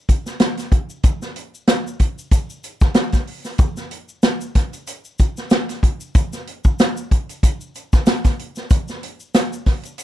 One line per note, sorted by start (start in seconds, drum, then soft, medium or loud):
0.09 kick medium
0.09 closed hi-hat medium
0.09 shaker medium
0.26 snare soft
0.26 shaker medium
0.40 snare loud
0.40 closed hi-hat medium
0.40 shaker medium
0.57 snare soft
0.57 closed hi-hat medium
0.57 shaker medium
0.72 kick loud
0.72 closed hi-hat medium
0.90 shaker medium
1.03 kick loud
1.03 closed hi-hat medium
1.03 shaker medium
1.22 snare soft
1.22 shaker medium
1.36 closed hi-hat medium
1.55 shaker medium
1.67 snare loud
1.67 closed hi-hat loud
1.67 shaker medium
1.87 shaker medium
1.99 kick medium
1.99 closed hi-hat medium
2.19 shaker medium
2.31 kick loud
2.31 closed hi-hat medium
2.31 shaker loud
2.50 shaker medium
2.64 closed hi-hat medium
2.64 shaker medium
2.81 kick loud
2.81 snare soft
2.81 shaker medium
2.94 snare loud
2.94 closed hi-hat medium
2.94 shaker medium
3.12 kick medium
3.12 snare soft
3.12 closed hi-hat medium
3.12 shaker medium
3.27 open hi-hat medium
3.45 snare soft
3.45 shaker medium
3.58 kick loud
3.58 closed hi-hat medium
3.58 shaker medium
3.77 snare soft
3.77 shaker medium
3.91 closed hi-hat medium
4.09 shaker medium
4.23 snare loud
4.23 closed hi-hat medium
4.23 shaker medium
4.41 shaker medium
4.55 kick medium
4.55 snare soft
4.55 closed hi-hat medium
4.73 closed hi-hat soft
4.73 shaker medium
4.87 closed hi-hat medium
4.87 shaker medium
5.04 shaker medium
5.19 kick medium
5.19 closed hi-hat medium
5.19 shaker medium
5.37 snare soft
5.37 shaker medium
5.50 snare loud
5.50 closed hi-hat medium
5.50 shaker medium
5.69 snare soft
5.69 closed hi-hat medium
5.69 shaker medium
5.83 kick medium
5.83 closed hi-hat medium
6.00 shaker medium
6.15 kick loud
6.15 closed hi-hat medium
6.15 shaker medium
6.33 snare soft
6.33 shaker medium
6.47 closed hi-hat medium
6.64 kick medium
6.64 shaker medium
6.79 snare loud
6.79 closed hi-hat loud
6.79 shaker medium
6.97 shaker medium
7.11 kick medium
7.11 closed hi-hat medium
7.29 closed hi-hat medium
7.29 shaker medium
7.43 kick medium
7.43 closed hi-hat medium
7.43 shaker medium
7.61 shaker medium
7.75 closed hi-hat medium
7.75 shaker medium
7.93 kick medium
7.93 snare soft
7.93 shaker medium
8.06 snare loud
8.06 closed hi-hat medium
8.06 shaker medium
8.24 kick medium
8.24 snare soft
8.24 closed hi-hat medium
8.24 shaker medium
8.39 closed hi-hat medium
8.56 snare soft
8.56 shaker medium
8.70 kick loud
8.70 closed hi-hat medium
8.70 shaker medium
8.88 snare soft
8.88 shaker medium
9.03 closed hi-hat medium
9.20 shaker soft
9.34 snare loud
9.34 closed hi-hat medium
9.34 shaker loud
9.53 shaker medium
9.66 kick medium
9.66 snare soft
9.66 open hi-hat soft
9.83 closed hi-hat medium
9.83 shaker medium
9.98 closed hi-hat medium
9.98 shaker loud